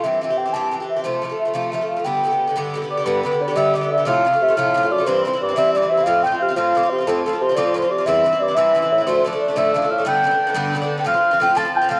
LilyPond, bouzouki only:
\new Staff \with { instrumentName = "Bouzouki" } { \time 6/8 \key f \lydian \tempo 4. = 120 <g, e c' g'>8 <g, e c' g'>16 <e c' g'>8 <e c' g'>16 <g, e c' g'>8 <g, e c' g'>16 <e c' g'>8 <e c' g'>16 | <c f a f'>8 <c f a f'>16 <f a f'>8 <f a f'>16 <c f a f'>8 <c f a f'>16 <f a f'>8 <f a f'>16 | <g, d b g'>8 <g, d b g'>16 <d b g'>8 <d b g'>16 <g, d b g'>8 <g, d b g'>16 <d b g'>8 <d b g'>16 | <g, d b g'>8 <g, d b g'>16 <d b g'>8 <d b g'>16 <g, d b g'>8 <g, d b g'>16 <d b g'>8 <d b g'>16 |
<c f a f'>8 <c f a f'>16 <f a f'>8 <f a f'>16 <c f a f'>8 <c f a f'>16 <f a f'>8 <f a f'>16 | <g, e c' e'>8 <g, e c' e'>16 <e c' e'>8 <e c' e'>16 <g, e c' e'>8 <g, e c' e'>16 <e c' e'>8 <e c' e'>16 | <a, f c' f'>8 <a, f c' f'>16 <f c' f'>8 <f c' f'>16 <a, f c' f'>8 <a, f c' f'>16 <f c' f'>8 <f c' f'>16 | <a, f c' f'>8 <a, f c' f'>16 <f c' f'>8 <f c' f'>16 <a, f c' f'>8 <a, f c' f'>16 <f c' f'>8 <f c' f'>16 |
<g, e c' e'>8 <g, e c' e'>16 <e c' e'>8 <e c' e'>16 <g, e c' e'>8 <g, e c' e'>16 <e c' e'>8 <e c' e'>16 | <a, f a d'>8 <a, f a d'>16 <f a d'>8 <f a d'>16 <a, f a d'>8 <a, f a d'>16 <f a d'>8 <f a d'>16 | <g, d b d'>8 <g, d b d'>16 <d b d'>8 <d b d'>16 <g, d b d'>8 <g, d b d'>16 <d b d'>8 <d b d'>16 | <a, f c' f'>16 <f c' f'>8 <f c' f'>16 <a, f c' f'>8 <a, f c' f'>16 <f c' f'>8 <f c' f'>16 <a, f c' f'>8 | }